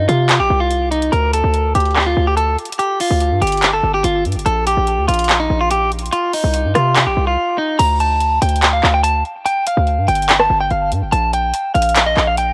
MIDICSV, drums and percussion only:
0, 0, Header, 1, 2, 480
1, 0, Start_track
1, 0, Tempo, 416667
1, 1297, Time_signature, 4, 2, 24, 8
1, 14438, End_track
2, 0, Start_track
2, 0, Title_t, "Drums"
2, 101, Note_on_c, 9, 42, 78
2, 216, Note_off_c, 9, 42, 0
2, 335, Note_on_c, 9, 42, 78
2, 337, Note_on_c, 9, 39, 122
2, 450, Note_off_c, 9, 42, 0
2, 452, Note_off_c, 9, 39, 0
2, 814, Note_on_c, 9, 42, 83
2, 929, Note_off_c, 9, 42, 0
2, 1057, Note_on_c, 9, 42, 58
2, 1172, Note_off_c, 9, 42, 0
2, 1177, Note_on_c, 9, 42, 57
2, 1292, Note_off_c, 9, 42, 0
2, 1297, Note_on_c, 9, 42, 83
2, 1412, Note_off_c, 9, 42, 0
2, 1537, Note_on_c, 9, 42, 80
2, 1652, Note_off_c, 9, 42, 0
2, 1771, Note_on_c, 9, 42, 69
2, 1886, Note_off_c, 9, 42, 0
2, 2017, Note_on_c, 9, 42, 79
2, 2077, Note_off_c, 9, 42, 0
2, 2077, Note_on_c, 9, 42, 69
2, 2137, Note_off_c, 9, 42, 0
2, 2137, Note_on_c, 9, 42, 56
2, 2197, Note_off_c, 9, 42, 0
2, 2197, Note_on_c, 9, 42, 45
2, 2255, Note_off_c, 9, 42, 0
2, 2255, Note_on_c, 9, 42, 78
2, 2257, Note_on_c, 9, 39, 122
2, 2370, Note_off_c, 9, 42, 0
2, 2372, Note_off_c, 9, 39, 0
2, 2734, Note_on_c, 9, 42, 82
2, 2849, Note_off_c, 9, 42, 0
2, 2977, Note_on_c, 9, 42, 44
2, 3057, Note_off_c, 9, 42, 0
2, 3057, Note_on_c, 9, 42, 58
2, 3137, Note_off_c, 9, 42, 0
2, 3137, Note_on_c, 9, 42, 71
2, 3218, Note_off_c, 9, 42, 0
2, 3218, Note_on_c, 9, 42, 86
2, 3333, Note_off_c, 9, 42, 0
2, 3457, Note_on_c, 9, 46, 80
2, 3572, Note_off_c, 9, 46, 0
2, 3691, Note_on_c, 9, 42, 71
2, 3806, Note_off_c, 9, 42, 0
2, 3937, Note_on_c, 9, 42, 75
2, 3997, Note_off_c, 9, 42, 0
2, 3997, Note_on_c, 9, 42, 69
2, 4057, Note_off_c, 9, 42, 0
2, 4057, Note_on_c, 9, 42, 58
2, 4117, Note_off_c, 9, 42, 0
2, 4117, Note_on_c, 9, 42, 46
2, 4175, Note_off_c, 9, 42, 0
2, 4175, Note_on_c, 9, 42, 76
2, 4177, Note_on_c, 9, 39, 123
2, 4290, Note_off_c, 9, 42, 0
2, 4292, Note_off_c, 9, 39, 0
2, 4654, Note_on_c, 9, 42, 81
2, 4769, Note_off_c, 9, 42, 0
2, 4897, Note_on_c, 9, 42, 43
2, 4977, Note_off_c, 9, 42, 0
2, 4977, Note_on_c, 9, 42, 57
2, 5057, Note_off_c, 9, 42, 0
2, 5057, Note_on_c, 9, 42, 72
2, 5137, Note_off_c, 9, 42, 0
2, 5137, Note_on_c, 9, 42, 85
2, 5252, Note_off_c, 9, 42, 0
2, 5376, Note_on_c, 9, 42, 77
2, 5492, Note_off_c, 9, 42, 0
2, 5610, Note_on_c, 9, 42, 71
2, 5726, Note_off_c, 9, 42, 0
2, 5857, Note_on_c, 9, 42, 78
2, 5917, Note_off_c, 9, 42, 0
2, 5917, Note_on_c, 9, 42, 68
2, 5977, Note_off_c, 9, 42, 0
2, 5977, Note_on_c, 9, 42, 57
2, 6038, Note_off_c, 9, 42, 0
2, 6038, Note_on_c, 9, 42, 46
2, 6095, Note_off_c, 9, 42, 0
2, 6095, Note_on_c, 9, 42, 78
2, 6098, Note_on_c, 9, 39, 124
2, 6211, Note_off_c, 9, 42, 0
2, 6213, Note_off_c, 9, 39, 0
2, 6574, Note_on_c, 9, 42, 78
2, 6689, Note_off_c, 9, 42, 0
2, 6817, Note_on_c, 9, 42, 41
2, 6897, Note_off_c, 9, 42, 0
2, 6897, Note_on_c, 9, 42, 58
2, 6977, Note_off_c, 9, 42, 0
2, 6977, Note_on_c, 9, 42, 71
2, 7057, Note_off_c, 9, 42, 0
2, 7057, Note_on_c, 9, 42, 82
2, 7172, Note_off_c, 9, 42, 0
2, 7297, Note_on_c, 9, 46, 76
2, 7412, Note_off_c, 9, 46, 0
2, 7531, Note_on_c, 9, 42, 72
2, 7646, Note_off_c, 9, 42, 0
2, 7778, Note_on_c, 9, 37, 70
2, 7781, Note_on_c, 9, 42, 78
2, 7893, Note_off_c, 9, 37, 0
2, 7896, Note_off_c, 9, 42, 0
2, 8015, Note_on_c, 9, 42, 76
2, 8017, Note_on_c, 9, 39, 123
2, 8130, Note_off_c, 9, 42, 0
2, 8132, Note_off_c, 9, 39, 0
2, 8977, Note_on_c, 9, 49, 104
2, 8978, Note_on_c, 9, 42, 86
2, 9092, Note_off_c, 9, 49, 0
2, 9093, Note_off_c, 9, 42, 0
2, 9217, Note_on_c, 9, 42, 80
2, 9332, Note_off_c, 9, 42, 0
2, 9451, Note_on_c, 9, 42, 72
2, 9566, Note_off_c, 9, 42, 0
2, 9697, Note_on_c, 9, 42, 67
2, 9777, Note_off_c, 9, 42, 0
2, 9777, Note_on_c, 9, 42, 67
2, 9857, Note_off_c, 9, 42, 0
2, 9857, Note_on_c, 9, 42, 67
2, 9935, Note_off_c, 9, 42, 0
2, 9935, Note_on_c, 9, 42, 78
2, 9937, Note_on_c, 9, 39, 127
2, 10050, Note_off_c, 9, 42, 0
2, 10052, Note_off_c, 9, 39, 0
2, 10178, Note_on_c, 9, 39, 70
2, 10293, Note_off_c, 9, 39, 0
2, 10414, Note_on_c, 9, 42, 84
2, 10529, Note_off_c, 9, 42, 0
2, 10658, Note_on_c, 9, 42, 68
2, 10773, Note_off_c, 9, 42, 0
2, 10897, Note_on_c, 9, 42, 88
2, 11013, Note_off_c, 9, 42, 0
2, 11137, Note_on_c, 9, 42, 78
2, 11252, Note_off_c, 9, 42, 0
2, 11371, Note_on_c, 9, 42, 70
2, 11486, Note_off_c, 9, 42, 0
2, 11617, Note_on_c, 9, 42, 67
2, 11697, Note_off_c, 9, 42, 0
2, 11697, Note_on_c, 9, 42, 67
2, 11777, Note_off_c, 9, 42, 0
2, 11777, Note_on_c, 9, 42, 68
2, 11855, Note_off_c, 9, 42, 0
2, 11855, Note_on_c, 9, 42, 78
2, 11857, Note_on_c, 9, 39, 127
2, 11970, Note_off_c, 9, 42, 0
2, 11972, Note_off_c, 9, 39, 0
2, 11977, Note_on_c, 9, 37, 89
2, 12092, Note_off_c, 9, 37, 0
2, 12334, Note_on_c, 9, 42, 83
2, 12449, Note_off_c, 9, 42, 0
2, 12578, Note_on_c, 9, 42, 73
2, 12693, Note_off_c, 9, 42, 0
2, 12817, Note_on_c, 9, 42, 86
2, 12933, Note_off_c, 9, 42, 0
2, 13057, Note_on_c, 9, 42, 80
2, 13172, Note_off_c, 9, 42, 0
2, 13291, Note_on_c, 9, 42, 71
2, 13406, Note_off_c, 9, 42, 0
2, 13537, Note_on_c, 9, 42, 66
2, 13618, Note_off_c, 9, 42, 0
2, 13618, Note_on_c, 9, 42, 68
2, 13698, Note_off_c, 9, 42, 0
2, 13698, Note_on_c, 9, 42, 68
2, 13775, Note_off_c, 9, 42, 0
2, 13775, Note_on_c, 9, 42, 79
2, 13778, Note_on_c, 9, 39, 127
2, 13890, Note_off_c, 9, 42, 0
2, 13893, Note_off_c, 9, 39, 0
2, 14018, Note_on_c, 9, 39, 70
2, 14133, Note_off_c, 9, 39, 0
2, 14254, Note_on_c, 9, 42, 84
2, 14369, Note_off_c, 9, 42, 0
2, 14438, End_track
0, 0, End_of_file